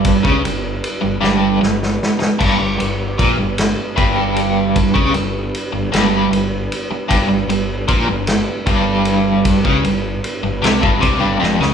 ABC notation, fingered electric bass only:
X:1
M:6/8
L:1/16
Q:3/8=51
K:G
V:1 name="Fingered electric bass" clef=bass
G,,, ^C,, G,,,2 z G,,, G,,,2 G,,,2 z2 | G,,, G,,, G,,,2 _B,,, G,,,2 z G,,,4- | G,,, ^C,, G,,,2 z G,,, G,,,2 G,,,2 z2 | G,,, G,,, G,,,2 _B,,, G,,,2 z G,,,4- |
G,,, ^C,, G,,,2 z G,,, =C,, G,,, C,, G,,, =F,,, ^C,, |]